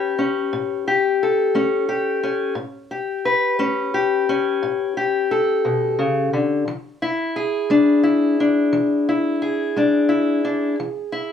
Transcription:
0.00 0.11 A3 medium
0.00 0.18 C#4 medium
0.00 0.86 G4 medium
0.00 1.21 B4 medium
0.19 1.54 C#4 medium
0.53 1.14 A2 medium
0.88 1.87 G4 medium
1.23 2.54 A4 medium
1.55 2.16 A3 medium
1.55 2.22 C#4 medium
1.89 2.53 G4 medium
2.23 2.53 C#4 soft
2.55 3.18 A2 medium
2.91 3.93 G4 medium
3.25 5.31 B4 medium
3.59 4.21 A3 medium
3.59 4.28 C#4 medium
3.94 4.96 G4 medium
4.29 6.64 C#4 medium
4.63 5.24 A2 medium
4.97 6.64 G4 medium
5.31 6.64 A4 medium
5.65 5.99 B2 medium
5.99 6.33 C#3 medium
6.33 6.67 D3 medium
6.68 7.29 E3 medium
7.02 8.03 E4 medium
7.36 9.41 G#4 medium
7.70 8.32 G#3 medium
7.70 8.40 D4 medium
8.03 9.07 E4 medium
8.40 9.76 D4 medium
8.73 9.35 E3 medium
9.09 10.08 E4 medium
9.42 11.32 G#4 medium
9.76 10.38 G#3 medium
9.76 10.43 D4 soft
10.09 10.74 E4 medium
10.45 10.75 D4 medium
10.80 11.32 E3 medium
11.12 11.32 E4 medium

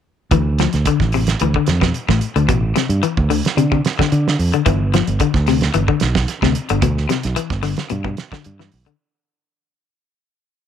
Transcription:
0.31 0.66 D2 medium
0.31 0.48 E3 medium
0.31 kick medium
0.31 closed hi-hat medium
0.59 0.76 F3 medium
0.59 snare medium
0.59 closed hi-hat soft
0.73 0.84 D2 medium
0.73 snare soft
0.73 closed hi-hat soft
0.85 1.03 D3 medium
0.85 kick medium
0.85 closed hi-hat medium
1.00 1.34 A1 medium
1.00 kick medium
1.00 snare soft
1.12 1.31 C3 medium
1.12 open hi-hat medium
1.27 snare medium
1.27 closed hi-hat soft
1.40 1.53 D2 medium
1.40 1.50 E3 medium
1.40 closed hi-hat medium
1.54 1.72 D3 medium
1.54 kick medium
1.66 1.91 F2 medium
1.66 snare medium
1.66 closed hi-hat soft
1.81 1.98 B2 medium
1.81 kick medium
1.81 snare medium
1.94 closed hi-hat medium
2.09 2.20 A1 medium
2.09 2.25 A2 medium
2.09 kick medium
2.09 snare medium
2.21 closed hi-hat soft
2.36 2.47 D2 medium
2.36 2.44 D3 medium
2.36 closed hi-hat soft
2.49 2.72 A1 medium
2.49 2.65 B2 medium
2.49 kick medium
2.49 closed hi-hat medium
2.76 2.92 C3 medium
2.76 snare medium
2.76 closed hi-hat soft
2.89 3.01 G2 medium
2.89 closed hi-hat soft
3.03 3.20 E3 medium
3.03 closed hi-hat medium
3.17 3.40 D2 medium
3.17 kick medium
3.30 3.47 D3 medium
3.30 open hi-hat medium
3.45 snare medium
3.45 closed hi-hat soft
3.57 3.66 C3 medium
3.57 3.80 D3 medium
3.57 closed hi-hat medium
3.72 3.88 C3 medium
3.72 kick medium
3.85 snare medium
3.85 closed hi-hat soft
3.99 4.16 D3 medium
3.99 kick medium
3.99 snare medium
4.12 4.35 D3 medium
4.12 closed hi-hat medium
4.28 snare medium
4.39 4.51 F2 medium
4.39 open hi-hat medium
4.53 4.61 D3 medium
4.53 closed hi-hat soft
4.66 5.01 G1 medium
4.66 4.82 E3 medium
4.66 kick medium
4.66 closed hi-hat medium
4.94 5.10 F3 medium
4.94 snare medium
4.94 closed hi-hat soft
5.07 5.18 G1 medium
5.07 closed hi-hat soft
5.20 5.37 D3 medium
5.20 kick medium
5.20 closed hi-hat medium
5.34 5.68 D2 medium
5.34 kick medium
5.34 snare soft
5.47 5.64 C3 medium
5.47 snare soft
5.47 open hi-hat medium
5.61 snare medium
5.61 closed hi-hat soft
5.74 5.86 G1 medium
5.74 5.83 E3 medium
5.74 closed hi-hat medium
5.88 6.05 D3 medium
5.88 kick medium
6.00 6.25 B1 medium
6.00 snare medium
6.00 closed hi-hat soft
6.15 kick medium
6.15 snare medium
6.28 snare soft
6.28 closed hi-hat medium
6.42 6.53 D2 medium
6.42 6.59 C3 medium
6.42 kick medium
6.42 snare medium
6.55 closed hi-hat medium
6.69 6.81 G1 medium
6.69 6.78 D3 medium
6.69 closed hi-hat soft
6.82 7.05 D2 medium
6.82 6.99 B2 medium
6.82 kick medium
6.82 closed hi-hat medium
6.98 snare soft
7.09 7.26 C3 medium
7.09 snare medium
7.09 closed hi-hat medium
7.23 7.35 B1 loud
7.23 snare soft
7.23 closed hi-hat medium
7.36 7.53 E3 medium
7.36 closed hi-hat medium
7.50 7.73 G1 medium
7.50 kick medium
7.50 snare soft
7.63 7.80 D3 medium
7.63 snare soft
7.63 open hi-hat medium
7.77 snare medium
7.77 closed hi-hat soft
7.89 8.14 G2 medium
7.89 7.99 B2 medium
7.89 closed hi-hat medium
8.04 8.21 B2 medium
8.04 kick medium
8.17 snare medium
8.17 closed hi-hat soft
8.32 8.49 D3 medium
8.32 kick medium
8.32 snare medium
8.44 8.69 G2 medium
8.44 closed hi-hat medium
8.59 8.76 E3 medium
8.59 snare medium
8.72 8.85 B1 medium
8.72 open hi-hat medium
8.86 8.94 D3 medium
8.86 closed hi-hat soft

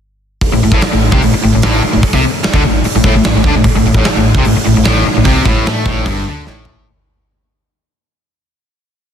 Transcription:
0.41 kick loud
0.41 open hi-hat medium
0.53 0.62 A1 medium
0.53 0.63 A2 medium
0.63 0.71 A1 medium
0.63 0.73 A2 medium
0.72 0.82 A1 medium
0.72 0.83 A2 medium
0.72 kick loud
0.81 muted distorted electric guitar stroke medium
0.81 muted overdriven electric guitar stroke medium
0.81 snare loud
0.81 open hi-hat medium
0.85 muted fingered electric bass stroke soft
0.93 1.12 A1 medium
0.93 1.09 A2 medium
1.12 1.22 C2 loud
1.12 1.23 C3 loud
1.12 kick loud
1.22 1.33 A1 medium
1.22 1.33 A2 medium
1.22 open hi-hat medium
1.34 muted distorted electric guitar stroke medium
1.34 muted overdriven electric guitar stroke medium
1.34 muted fingered electric bass stroke soft
1.45 1.53 A1 medium
1.45 1.54 A2 medium
1.55 1.64 A1 medium
1.55 1.64 A2 medium
1.62 1.83 A1 medium
1.62 1.83 A2 loud
1.62 snare loud
1.62 open hi-hat medium
1.84 muted distorted electric guitar stroke medium
1.84 muted overdriven electric guitar stroke medium
1.84 muted fingered electric bass stroke soft
1.93 2.03 A1 medium
1.93 2.03 A2 medium
2.03 muted fingered electric bass stroke soft
2.03 muted distorted electric guitar stroke medium
2.03 muted overdriven electric guitar stroke medium
2.03 kick loud
2.03 open hi-hat medium
2.13 2.23 C2 medium
2.13 2.24 C3 loud
2.13 kick medium
2.43 muted distorted electric guitar stroke medium
2.43 muted overdriven electric guitar stroke medium
2.43 muted fingered electric bass stroke soft
2.43 snare loud
2.43 open hi-hat medium
2.54 2.64 D2 loud
2.54 2.64 D3 loud
2.54 kick loud
2.65 2.84 A1 medium
2.65 2.81 A2 medium
2.84 muted distorted electric guitar stroke medium
2.84 muted overdriven electric guitar stroke medium
2.84 muted fingered electric bass stroke soft
2.84 open hi-hat medium
2.96 3.04 A1 medium
2.96 3.05 A2 medium
3.04 3.14 A1 loud
3.04 3.15 A2 loud
3.04 kick loud
3.15 3.24 A1 medium
3.15 3.26 A2 medium
3.24 3.35 A1 medium
3.24 3.36 A2 medium
3.24 snare loud
3.24 open hi-hat medium
3.36 3.44 A1 medium
3.36 3.46 A2 medium
3.44 3.54 D2 loud
3.44 3.56 D3 loud
3.44 kick loud
3.55 3.65 A1 medium
3.55 3.66 A2 medium
3.64 kick loud
3.64 open hi-hat medium
3.76 3.85 A1 medium
3.76 3.86 A2 medium
3.85 3.94 A1 medium
3.85 3.97 A2 medium
3.94 4.04 A1 loud
3.94 kick loud
3.98 4.06 A2 loud
4.04 muted fingered electric bass stroke soft
4.04 muted distorted electric guitar stroke medium
4.04 snare loud
4.04 open hi-hat medium
4.08 muted overdriven electric guitar stroke medium
4.16 4.34 A1 medium
4.16 4.33 A2 medium
4.35 4.45 C2 loud
4.35 kick loud
4.39 4.47 C3 loud
4.45 4.56 A1 medium
4.45 4.56 A2 medium
4.45 open hi-hat medium
4.55 muted distorted electric guitar stroke medium
4.55 muted fingered electric bass stroke soft
4.55 muted overdriven electric guitar stroke medium
4.67 4.76 A1 medium
4.67 4.76 A2 medium
4.77 4.86 A1 medium
4.77 4.87 A2 medium
4.84 5.05 A1 loud
4.84 5.04 A2 loud
4.84 snare loud
4.84 open hi-hat medium
4.88 5.07 A2 loud
5.05 muted distorted electric guitar stroke medium
5.05 muted fingered electric bass stroke soft
5.05 muted overdriven electric guitar stroke medium
5.17 5.25 A1 medium
5.17 5.27 A2 medium
5.25 5.45 C2 medium
5.25 5.46 C3 loud
5.25 kick loud
5.25 open hi-hat medium
5.45 5.64 A1 medium
5.45 5.67 A2 loud
5.45 kick loud
5.66 5.86 A2 medium
5.66 5.86 A3 loud
5.66 snare loud
5.66 open hi-hat medium
5.86 6.05 A1 medium
5.86 6.06 A2 loud
5.86 kick loud
6.06 6.25 G1 medium
6.06 6.27 G2 loud
6.06 kick loud
6.06 open hi-hat medium
6.27 6.46 D2 medium
6.27 6.47 D3 loud
6.47 6.84 A1 medium
6.47 6.87 A2 loud
6.47 snare medium
6.65 floor tom medium

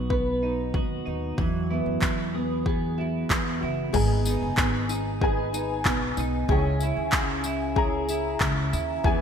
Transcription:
0.00 0.70 B1 medium
0.00 1.38 B2 medium
0.00 1.38 F#3 medium
0.00 0.10 B3 soft
0.00 0.74 B3 soft
0.00 0.41 D#4 soft
0.00 0.42 D#4 medium
0.00 0.74 F#4 medium
0.10 2.02 B3 medium
0.10 2.66 B4 medium
0.10 kick medium
0.42 1.05 D#4 soft
0.42 1.04 D#4 medium
0.74 1.04 D#2 medium
0.74 1.70 B3 medium
0.74 1.73 F#4 medium
0.74 kick medium
1.06 1.36 D#2 medium
1.06 1.44 D#4 medium
1.06 1.44 D#4 soft
1.38 1.82 E2 medium
1.38 3.94 E3 medium
1.38 3.94 F#3 medium
1.38 kick loud
1.70 2.34 B3 medium
1.70 2.97 E4 soft
1.86 2.01 F#2 medium
2.02 3.26 E2 medium
2.02 2.66 B3 soft
2.02 2.97 F#4 medium
2.02 kick medium
2.02 clap medium
2.35 3.30 B3 soft
2.35 3.30 G#4 medium
2.66 3.94 B3 medium
2.66 3.93 G#4 medium
2.66 kick medium
2.98 3.61 E4 medium
2.98 3.59 F#4 medium
3.30 3.59 E2 medium
3.30 4.57 B3 soft
3.30 4.58 G#4 medium
3.30 kick loud
3.30 clap loud
3.61 3.92 F#1 medium
3.61 4.00 E4 medium
3.61 3.99 F#4 soft
3.93 4.38 G#1 loud
3.93 6.48 G#2 medium
3.93 5.85 B3 medium
3.93 4.83 D#4 medium
3.93 5.21 G#4 medium
3.93 4.83 G#4 medium
3.93 4.84 B4 medium
3.93 4.84 G#5 medium
3.93 kick loud
3.93 crash medium
4.25 4.87 D#4 medium
4.25 4.89 D#4 medium
4.25 tambourine medium
4.42 4.57 F#1 medium
4.57 5.81 G#1 loud
4.57 5.84 B3 medium
4.57 5.22 G#4 medium
4.57 kick loud
4.57 clap loud
4.89 5.52 D#4 medium
4.89 5.53 D#4 medium
4.89 tambourine medium
5.20 6.10 D#4 medium
5.20 6.11 G#4 medium
5.20 6.49 G#4 medium
5.20 7.14 G#4 medium
5.20 6.11 B4 medium
5.20 6.12 G#5 loud
5.20 kick loud
5.53 6.15 D#4 medium
5.53 6.18 D#4 medium
5.53 tambourine medium
5.85 6.15 B1 medium
5.85 6.55 B3 medium
5.85 6.50 B3 medium
5.85 kick loud
5.85 clap loud
6.17 6.47 B1 medium
6.17 6.55 D#4 medium
6.17 6.56 D#4 medium
6.17 tambourine soft
6.48 6.93 C#2 medium
6.48 9.03 C#3 medium
6.48 8.40 C#4 medium
6.48 7.39 E4 medium
6.48 7.75 G#4 medium
6.48 7.39 G#4 medium
6.48 7.39 C#5 medium
6.48 6.56 G5 medium
6.48 kick loud
6.58 7.43 G#5 loud
6.80 7.43 E4 medium
6.80 7.46 E4 medium
6.80 tambourine medium
6.97 7.13 D#2 medium
7.12 8.36 C#2 loud
7.12 8.39 C#4 medium
7.12 7.31 F#4 medium
7.12 kick loud
7.12 clap loud
7.31 7.77 G#4 medium
7.44 8.08 E4 medium
7.44 8.09 E4 medium
7.44 tambourine medium
7.75 8.65 E4 medium
7.75 8.65 G#4 medium
7.75 9.04 G#4 medium
7.75 9.21 G#4 medium
7.75 8.66 C#5 medium
7.75 8.66 A#5 loud
7.75 kick loud
8.09 8.72 E4 medium
8.09 tambourine medium
8.40 8.70 C#2 loud
8.40 9.10 C#4 medium
8.40 9.05 C#4 medium
8.40 kick loud
8.40 clap loud
8.73 9.02 D#2 medium
8.73 9.21 E4 medium
8.73 tambourine medium
9.02 9.21 E2 loud
9.02 9.21 E3 medium
9.02 9.21 B3 medium
9.02 9.21 E4 medium
9.02 9.21 G#4 medium
9.02 9.21 B4 medium
9.02 9.21 G#5 loud
9.02 kick loud

